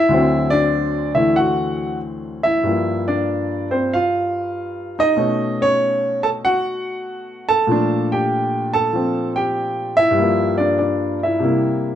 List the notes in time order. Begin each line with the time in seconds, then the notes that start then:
Already playing: F3 A#3 E4 E5
0.09 D2 D3 F#3
0.14 C4
0.50 D4 D5
1.15 D3 E3 A3 E4 E5
1.36 F#4 F#5
2.43 E4 E5
2.63 G2 G3 A#3
2.68 F3
3.08 D4 D5
3.71 C4 C5
3.93 F4 F5
4.99 D#4 D#5
5.17 B2 A3 C#4 D#4
5.61 C#4 C#5
6.23 A4 A5
6.45 F#4 F#5
7.49 A4 A5
7.67 A#2 F3 A3
7.72 D4
8.12 G4 G5
8.73 A4 A5
8.93 F3 C4
9.36 G4 G5
9.97 E4 E5
10.11 G2 G3
10.19 F3 A#3
10.58 D4 D5
10.79 D4 D5
11.23 E4 E5
11.40 C3 G3 A#3
11.45 E4